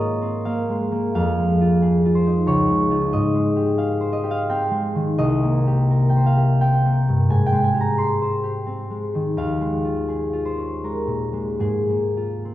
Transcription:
Already playing: G#2 A#3 C4 A#4 C5 C#5 D#5
0.00 F4
0.22 C4
0.45 A#3 F5
0.69 G#3
0.92 A#3
1.15 F2 F5
1.39 G#3
1.61 F4
1.82 G#4
2.06 F4
2.15 C5
2.27 D#4
2.47 C#2 C#5
2.70 G#3
2.91 D#4 F4
3.13 G#2 D#5
3.35 G#3
3.56 G4
3.78 G#4 F5
4.01 C5
4.13 D#5
4.24 G4
4.31 F5
4.49 C4 G5
4.71 G#3
4.95 D#3
5.18 C2 D#5
5.43 A#3
5.67 G4
5.91 A#4
6.10 G5
6.16 C5
6.26 F5
6.37 G4
6.61 C4 G5
6.86 A#3
7.09 G2
7.30 G#2 G#5
7.46 G5
7.52 G#3
7.64 G#5
7.74 G4
7.81 A#5
7.97 G#4 C6
8.22 C5
8.44 G4
8.67 C4
8.90 G#3
9.15 D#3
9.37 D#2 F5
9.61 G#3
9.85 F4
10.08 G#4
10.33 F4
10.45 C5
10.58 C#4
10.83 G#3 A#4
11.07 A#2
11.33 G#3
11.59 G#2 G#4
11.89 A#3
12.17 F4
12.45 C4

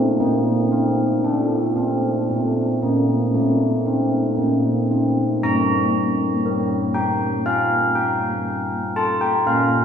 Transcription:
Already playing: A4
0.20 A#3
0.72 C4
1.24 D4 A4
1.76 C4
2.29 A3
2.82 A#3
3.34 A3
3.86 C4
4.37 A#3
4.91 C4
5.43 G3 A#5
6.45 G4 A#4
6.94 G5
7.46 F5
7.95 G5
8.96 A5
9.21 G5
9.47 A#3 F5

